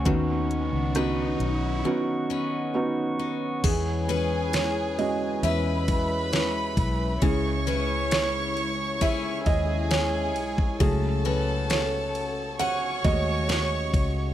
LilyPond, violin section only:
\new Staff \with { instrumentName = "Violin section" } { \time 4/4 \key e \major \tempo 4 = 67 r1 | <gis' gis''>2 <b' b''>2 | <cis'' cis'''>2~ <cis'' cis'''>8 <gis' gis''>4. | <a' a''>2 <cis'' cis'''>2 | }